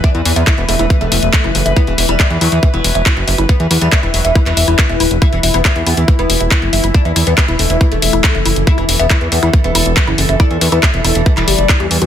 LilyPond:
<<
  \new Staff \with { instrumentName = "Synth arpeggio sound" } { \time 4/4 \key e \minor \tempo 4 = 139 e''16 e'16 r16 e''16 e'16 r16 e''16 e'16 r16 e''16 e'16 r16 e''16 e'16 r16 e''16 | e'16 r16 e''16 e'16 r16 e''16 e'16 r16 e''16 e'16 r16 e''16 e'16 r16 e''16 e'16 | r16 e''16 e'16 r16 e''16 e'16 r16 e''16 e'16 r16 e''16 e'16 r16 e''16 e'16 r16 | e'16 r16 e''16 e'16 r16 e''16 e'16 r16 e''16 e'16 r16 e''16 e'16 r16 e''16 e'16 |
r16 e''16 e'16 r16 e''16 e'16 r16 e''16 e'16 r16 e''16 e'16 r16 e''16 e'16 r16 | e''16 e'16 r16 e''16 e'16 r16 e''16 e'16 r16 e''16 e'16 r16 e''16 e'16 r16 e''16 | e'16 r16 e''16 e'16 r16 e''16 e'16 r16 e''16 e'16 g'16 r16 e'16 g'16 r16 fis'16 | }
  \new Staff \with { instrumentName = "Ambient pad" } { \time 4/4 \key e \minor <e b'>1~ | <e b'>1~ | <e b'>1 | <e e'>1~ |
<e e'>1 | a'1~ | a'1 | }
  \new Staff \with { instrumentName = "Oud" } { \clef bass \time 4/4 \key e \minor d'16 e16 e16 b16 r16 e16 a16 e16 r16 a4. r16 | b16 e16 e16 g16 e16 e16 fis16 e16 e16 fis4. r16 | b16 e16 e16 g16 e16 e16 fis16 e16 e16 e4. r16 | e'16 e16 e16 b16 e16 e16 b16 e16 e16 b4. r16 |
d'16 e16 e16 b16 e16 e16 a16 e16 e16 a4. r16 | e'16 e16 e16 b16 e16 e16 b16 e16 e16 b4. r16 | d'16 e16 e16 b16 e16 e16 a16 e16 e16 g4. r16 | }
  \new Staff \with { instrumentName = "Analog synth bass" } { \clef bass \time 4/4 \key e \minor r16 e,16 e,16 e,16 r16 e,,16 e,,16 e,,16 r16 e,,16 e,,16 e,,16 r16 fis,,16 fis,,16 fis,,16 | r16 e,,16 e,,16 e,,16 r16 e,16 e,16 e,16 r16 e,,16 e,,16 e,,16 r16 fis,,16 fis,,16 fis,,16 | r16 e,16 e,16 e,16 r16 e,,16 e,,16 e,,16 r16 e,,16 e,,16 e,,16 r16 e,,16 d,,16 e,,16 | r16 e,,16 e,,16 e,,16 r16 e,16 e,16 e,16 r16 e,,16 e,,16 e,,16 r16 fis,,16 fis,,16 fis,,16 |
r16 e,16 e,16 e,16 r16 e,,16 e,,16 e,,16 r16 e,,16 e,,16 e,,16 r16 fis,,16 fis,,16 fis,,16 | r16 e,,16 e,,16 e,,16 r16 e,16 e,16 e,16 r16 e,,16 e,,16 e,,16 r16 fis,,16 fis,,16 fis,,16 | r16 e,16 e,16 e,16 r16 e,,16 e,,16 e,,16 r16 e,,16 fis,,16 fis,,16 r16 e,16 e,16 e,16 | }
  \new DrumStaff \with { instrumentName = "Drums" } \drummode { \time 4/4 <hh bd>16 hh16 hho16 hh16 <hc hh bd>16 hh16 hho16 hh16 <hh bd>16 hh16 hho16 hh16 <hc hh bd>16 hh16 hho16 hh16 | <hh bd>16 hh16 hho16 hh16 <hc hh bd>16 hh16 hho16 hh16 <hh bd>16 hh16 hho16 hh16 <hc hh bd>16 hh16 hho16 hh16 | <hh bd>16 hh16 hho16 hh16 <hc hh bd>16 hh16 hho16 hh16 <hh bd>16 <hc hh>16 hho16 hh16 <hc hh bd>16 hh16 hho16 hh16 | <hh bd>16 hh16 hho16 hh16 <hc hh bd>16 hh16 hho16 hh16 <hh bd>16 hh16 hho16 hh16 <hc hh bd>16 hh16 hho16 hh16 |
<hh bd>16 hh16 hho16 hh16 <hc hh bd>16 hh16 hho16 hh16 <hh bd>16 hh16 hho16 hh16 <hc hh bd>16 hh16 hho16 hh16 | <hh bd>16 hh16 hho16 hh16 <hc hh bd>16 hh16 hho16 hh16 <hh bd>16 hh16 hho16 hh16 <hc hh bd>16 hh16 hho16 hh16 | <hh bd>16 hh16 hho16 hh16 <hc hh bd>16 hh16 hho16 hh16 <hh bd>16 <hc hh>16 hho16 hh16 <hc hh bd>16 hh16 hho16 hh16 | }
>>